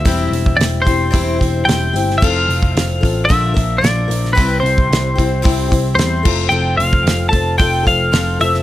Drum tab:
CC |----------------|x---------------|--------------x-|----------------|
HH |o-o-o-o-o-o-o-o-|--o-o-o-o-o-o-o-|o-o-o-o-o-o-o---|--o-o-o-o-o-o-o-|
SD |----o-------o--o|----o-------o--o|----o-------o---|----o-------o--o|
BD |o--o--o-o-o-----|o--o--o-o-o-----|o--o--o-o-o---o-|---o--o-o-o-----|